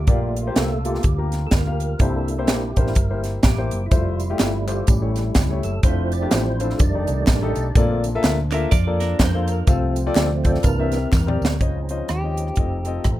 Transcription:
Already playing: french horn section F4, tonewheel organ G4
0.07 fingered electric bass A#1, grand piano A#2 A#3 F4 G4 D5, french horn section F3 G3 D4, tonewheel organ A3 A#3 F4, kick, closed hi-hat
0.36 closed hi-hat
0.47 grand piano A#3 F4 G4 C5
0.55 fingered electric bass C2, tonewheel organ A4, snare, closed hi-hat
0.84 tonewheel organ A3 A#3 F4 G4, grand piano A#3 F4 G4 A4, closed hi-hat
0.95 snare
1.03 fingered electric bass D2, kick, closed hi-hat
1.18 grand piano A#3 F4 G4 A#4
1.32 snare, closed hi-hat
1.47 tonewheel organ A4
1.51 fingered electric bass D2, tonewheel organ A#4, kick, snare, closed hi-hat
1.67 grand piano A#3 F4 G4 F5
1.80 closed hi-hat
1.98 fingered electric bass C2, grand piano C3 A#3 E4 G4 C5, french horn section G3 C4 E5, tonewheel organ A#3 D4 E4 A4, kick, closed hi-hat
2.28 closed hi-hat
2.38 grand piano A#3 E4 G4 C5
2.47 fingered electric bass A#1, tonewheel organ G4, snare, closed hi-hat
2.76 fingered electric bass A1, grand piano A#3 E4 G4 C5, tonewheel organ A#3 D4 E4 A#4, kick, closed hi-hat
2.87 snare
2.95 fingered electric bass G1, kick, closed hi-hat
3.10 grand piano A#3 E4 G4 C5
3.24 snare, closed hi-hat
3.43 fingered electric bass A1, tonewheel organ G4, kick, snare, closed hi-hat
3.58 grand piano A#3 E4 G4 C5
3.71 fingered electric bass F#1, closed hi-hat
3.86 tonewheel organ E4
3.91 fingered electric bass F1, french horn section F3, tonewheel organ G3 A3 E4 F4, grand piano A3 E4 F4 C5, kick, closed hi-hat, tambourine
4.20 closed hi-hat, tambourine
4.30 grand piano A3 E4 F4 G4
4.39 fingered electric bass G1, tonewheel organ E4, snare, clap, closed hi-hat, tambourine
4.68 grand piano A3 E4 F4 C5, tonewheel organ G4, clap, closed hi-hat, tambourine
4.87 fingered electric bass A1, grand piano A2, tonewheel organ G3 C#4 E4, french horn section G3 C#4, kick, closed hi-hat, tambourine
5.02 grand piano A3 E4 G4 C#5
5.16 snare, closed hi-hat, tambourine
5.35 fingered electric bass C#2, kick, snare, clap, closed hi-hat, tambourine
5.50 grand piano A3 E4 G4 C#5
5.63 fingered electric bass F#1, tonewheel organ A4, closed hi-hat, tambourine
5.83 fingered electric bass F1, tonewheel organ F3 C4 E4 C5, french horn section F3 C4 D4, grand piano A3 D4 F4 C5, kick, closed hi-hat, tambourine
6.12 tonewheel organ D5, closed hi-hat, tambourine
6.22 grand piano A3 D4 F4 G4
6.31 fingered electric bass A1, tonewheel organ C5, snare, clap, closed hi-hat, tambourine
6.60 grand piano A3 D4 F4 C5, tonewheel organ A4, closed hi-hat, tambourine
6.70 snare
6.78 fingered electric bass F1, tonewheel organ D#3 G3 A3 D4 D5, french horn section D#3 G3, kick, closed hi-hat, tambourine
6.95 grand piano A3 D#4 G4 D5
7.07 fingered electric bass C2, closed hi-hat, tambourine
7.27 fingered electric bass A1, kick, snare, clap, closed hi-hat, tambourine
7.42 grand piano A3 D#4 G4 A4
7.55 fingered electric bass B1, closed hi-hat, tambourine
7.74 fingered electric bass A#1, grand piano A#2 A#3 F4 A4 D5, tonewheel organ D3 A3 C4, french horn section F3, kick, closed hi-hat, tambourine
8.04 closed hi-hat, tambourine
8.15 grand piano A#3 F4 A4 E5
8.23 fingered electric bass D2, snare, clap, closed hi-hat, tambourine
8.52 grand piano A#3 F4 A4 E5, clean electric guitar D4 A#4, clap, closed hi-hat, tambourine
8.71 fingered electric bass F2, clean electric guitar F4 D5, kick, closed hi-hat, tambourine
8.87 grand piano A#3 F4 A4 D5
9.00 clean electric guitar D4 A#4, snare, closed hi-hat, tambourine
9.19 fingered electric bass F2, tonewheel organ C5, kick, snare, clap, closed hi-hat, tambourine
9.34 grand piano A#3 F4 A4 F5
9.48 closed hi-hat, tambourine
9.52 tonewheel organ A#4
9.66 fingered electric bass C2, grand piano C3 C4 F4 A4 F5, tonewheel organ F3 A3 C4 A4, french horn section C4 F4, kick, closed hi-hat, tambourine
9.96 closed hi-hat, tambourine
10.06 grand piano C4 F4 A4 D5
10.15 fingered electric bass D2, snare, clap, closed hi-hat, tambourine
10.44 grand piano C4 F4 A4 D5, tonewheel organ C5, kick, closed hi-hat, tambourine
10.55 snare
10.63 fingered electric bass C2, grand piano C3, tonewheel organ E3 A#3 D4 A#4, french horn section G3 A#3 C4 E4, kick, closed hi-hat, tambourine
10.79 grand piano C4 G4 A#4 E5
10.92 snare, closed hi-hat, tambourine
11.12 fingered electric bass E2, tonewheel organ A#4, kick, snare, clap, tambourine
11.27 grand piano C4 G4 A#4 D5, mid tom
11.41 fingered electric bass D2, snare, tambourine
11.60 fingered electric bass C#2, french horn section C#3 F3 D#4 C5, grand piano C#3 C#4 F4 C5 D#5, tonewheel organ F3 G#3 C4 C#4 D#4, kick, closed hi-hat
11.89 grand piano C#4 F4 C5 D#5, closed hi-hat
12.08 fingered electric bass D#2, clean electric guitar G4, cross-stick, closed hi-hat
12.24 grand piano C#4 F4 C5 D#5
12.37 closed hi-hat
12.47 cross-stick
12.56 fingered electric bass F1, tonewheel organ F3 A3 C4 A4, french horn section F3 A4, grand piano C4 F4 A4 D#5, kick, closed hi-hat
12.85 grand piano C4 F4 A4 D#5, cross-stick, closed hi-hat
13.04 fingered electric bass A1, kick, cross-stick, closed hi-hat

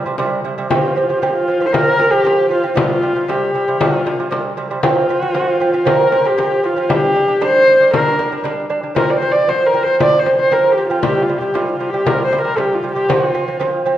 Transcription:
Already playing: horsehead fiddle F4
0.06 lute C3 G3
0.18 lute C3 G3, frame drum
0.44 lute C3 G3, frame drum
0.58 lute C3 G3
0.70 lute F3 C4, horsehead fiddle F4, frame drum
0.78 horsehead fiddle G4
0.88 horsehead fiddle F4
0.95 lute F3 C4, horsehead fiddle G4, frame drum
1.03 horsehead fiddle F4
1.09 lute F3 C4, horsehead fiddle G4, frame drum
1.18 lute F3, horsehead fiddle F4
1.23 lute C4, frame drum
1.27 horsehead fiddle G4
1.33 horsehead fiddle F4
1.48 lute F3 C4
1.60 lute F3 C4
1.66 horsehead fiddle C5
1.73 lute F3 C4, horsehead fiddle A#4, frame drum
1.98 lute F3 C4, frame drum
2.11 lute F3 C4, horsehead fiddle G4, frame drum
2.24 lute F3 C4, frame drum
2.50 lute F3 C4, horsehead fiddle F4
2.63 lute F3 C4
2.75 lute C3 G3, horsehead fiddle F4, frame drum
3.02 lute C3 G3, frame drum
3.15 lute C3 G3, frame drum
3.28 lute C3 G3, horsehead fiddle G4, frame drum
3.54 lute C3 G3
3.68 lute C3 G3
3.80 lute C3 G3, horsehead fiddle F4, frame drum
4.06 lute C3 G3, frame drum
4.19 lute C3 G3, frame drum
4.31 lute C3 G3, frame drum
4.57 lute C3 G3
4.71 lute C3 G3
4.84 lute F3 C4, horsehead fiddle F4, frame drum
5.09 lute F3 C4
5.22 lute F3 C4, frame drum
5.34 lute F3 C4, frame drum
5.60 lute F3 C4
5.73 lute F3 C4
5.85 lute F3 C4, horsehead fiddle A#4, frame drum
6.12 lute F3 C4, frame drum
6.24 lute F3 C4, horsehead fiddle G4, frame drum
6.38 lute F3 C4, frame drum
6.63 lute F3 C4, horsehead fiddle F4
6.77 lute F3 C4
6.89 lute G3 D4, horsehead fiddle G4, frame drum
7.16 lute G3 D4, frame drum
7.28 lute G3 D4, frame drum
7.41 lute G3 D4, horsehead fiddle C5, frame drum
7.67 lute G3 D4
7.80 lute G3 D4
7.93 lute G3 D4, horsehead fiddle A#4, frame drum
8.19 lute G3 D4, frame drum
8.32 lute G3 D4, frame drum
8.44 lute G3 D4, frame drum
8.70 lute G3 D4
8.83 lute G3 D4
8.95 lute F3 C4, horsehead fiddle A#4, frame drum
9.10 horsehead fiddle D5
9.16 horsehead fiddle C5
9.22 lute F3 C4, frame drum
9.32 lute F3 C4, horsehead fiddle D5
9.36 frame drum
9.48 lute F3 C4, horsehead fiddle C5, frame drum
9.67 horsehead fiddle A#4
9.74 lute F3 C4
9.84 lute F3 C4, horsehead fiddle C5
10.00 lute F3 C4, horsehead fiddle D5, frame drum
10.20 horsehead fiddle C5
10.25 lute F3 C4, frame drum
10.37 lute F3 C4, horsehead fiddle C5, frame drum
10.51 lute F3 C4, horsehead fiddle A#4, frame drum
10.72 horsehead fiddle G4
10.78 lute F3 C4
10.89 lute F3 C4, horsehead fiddle F4
11.02 lute C3 G3, horsehead fiddle G4, frame drum
11.22 horsehead fiddle F4
11.28 lute C3 G3, frame drum
11.38 lute C3 G3, horsehead fiddle G4, frame drum
11.54 lute C3 G3, horsehead fiddle F4, frame drum
11.72 horsehead fiddle F4
11.80 lute C3 G3
11.90 lute C3, horsehead fiddle G4
11.94 lute G3
12.06 lute C3 G3, horsehead fiddle A#4, frame drum
12.25 horsehead fiddle C5
12.31 lute C3 G3, frame drum
12.42 lute C3 G3, horsehead fiddle A#4, frame drum
12.56 lute C3 G3, horsehead fiddle G4, frame drum
12.75 horsehead fiddle F4
12.83 lute C3 G3
12.92 lute C3 G3, horsehead fiddle G4
13.08 lute F3 C4, horsehead fiddle F4, frame drum
13.34 lute F3 C4, frame drum
13.47 lute F3 C4, frame drum
13.59 lute F3 C4, frame drum
13.85 lute F3 C4

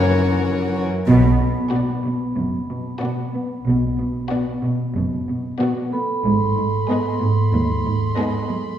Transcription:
Already playing: double bass section F#1, cello section F#2, viola section E3 C#4, violin section F#4 A#4 C#5, vibraphone F#5
1.07 double bass section B1, cello section B2, vibraphone B5
1.40 cello section B2
1.72 cello section B2, viola section B3, violin section F#4 D5
2.05 cello section B2
2.37 double bass section F#1, cello section F#2 B2
2.70 cello section B2
3.01 cello section B2, viola section B3, violin section F#4 D5
3.34 cello section B3
3.67 double bass section B1, cello section B2
3.99 cello section B2
4.30 cello section B2, viola section B3, violin section F#4 D5
4.63 cello section B2
4.95 double bass section F#1, cello section F#2 B2
5.28 cello section B2
5.59 cello section B2, viola section B3, violin section F#4 D5
5.92 cello section B3, vibraphone A4 B5
6.24 double bass section G#1, cello section G#2, violin section B5 C6
6.56 cello section G#2
6.88 cello section G#2, viola section B3, violin section G#4 D#5
7.21 cello section G#2
7.53 double bass section D#2, cello section D#2 G#2
7.84 cello section G#2
8.17 cello section G#2, viola section B3, violin section G#4 D#5
8.50 cello section G#3

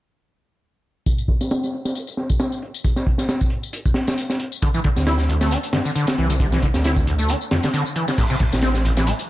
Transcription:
1.06 kick, closed hi-hat, tambourine
1.18 tambourine
1.28 kick, closed hi-hat
1.41 snare, tambourine
1.51 snare, closed hi-hat, tambourine
1.63 snare, tambourine
1.73 closed hi-hat
1.85 snare, tambourine
1.95 closed hi-hat, tambourine
2.07 closed hi-hat, tambourine
2.17 snare, closed hi-hat
2.30 kick, tambourine
2.40 snare, closed hi-hat, tambourine
2.52 tambourine
2.62 closed hi-hat
2.74 tambourine
2.84 kick, closed hi-hat, tambourine
2.96 snare, tambourine
3.07 kick, closed hi-hat
3.18 snare, tambourine
3.29 snare, closed hi-hat, tambourine
3.41 kick, tambourine
3.50 closed hi-hat
3.63 tambourine
3.73 closed hi-hat, tambourine
3.85 kick, tambourine
3.94 snare, closed hi-hat
4.07 snare, tambourine
4.18 closed hi-hat, tambourine
4.30 snare, tambourine
4.39 closed hi-hat
4.52 tambourine
4.62 acid bass D3, kick, closed hi-hat, tambourine
4.74 acid bass E3, tambourine
4.84 acid bass D3, kick, closed hi-hat
4.96 detuned saw bass D2, snare, tambourine
5.07 acid bass E4, snare, closed hi-hat, tambourine
5.18 snare, tambourine
5.29 acid bass D2, closed hi-hat
5.41 acid bass A3, snare, tambourine
5.51 acid bass D4, closed hi-hat, tambourine
5.63 closed hi-hat, tambourine
5.73 detuned saw bass G2, acid bass D3, snare, closed hi-hat
5.85 acid bass D3, tambourine
5.95 acid bass D3, closed hi-hat, tambourine
6.07 snare, closed hi-hat, tambourine
6.18 detuned saw bass C2, acid bass E3
6.30 acid bass D3, closed hi-hat, tambourine
6.40 acid bass D3, kick, closed hi-hat, tambourine
6.52 acid bass E3, snare, tambourine
6.62 acid bass D3, kick, closed hi-hat
6.74 detuned saw bass D2, snare, tambourine
6.84 acid bass E4, snare, closed hi-hat, tambourine
6.96 kick, tambourine
7.07 acid bass D2, closed hi-hat
7.19 acid bass A3, tambourine
7.28 acid bass D4, closed hi-hat, tambourine
7.41 tambourine
7.51 detuned saw bass F2, acid bass D3, snare, closed hi-hat
7.63 acid bass D3, snare, closed hi-hat, tambourine
7.73 acid bass D3, closed hi-hat, tambourine
7.86 tambourine
7.96 acid bass E3, closed hi-hat
8.08 acid bass D3, snare, tambourine
8.18 acid bass A2, kick, closed hi-hat, crash, tambourine
8.30 acid bass C3, tambourine
8.40 acid bass A2, kick, closed hi-hat
8.52 detuned saw bass A1, snare, tambourine
8.62 acid bass C4, snare, closed hi-hat, tambourine
8.74 snare, tambourine
8.85 acid bass A1, closed hi-hat
8.97 acid bass E3, snare, tambourine
9.07 acid bass A3, closed hi-hat, tambourine
9.19 closed hi-hat, tambourine

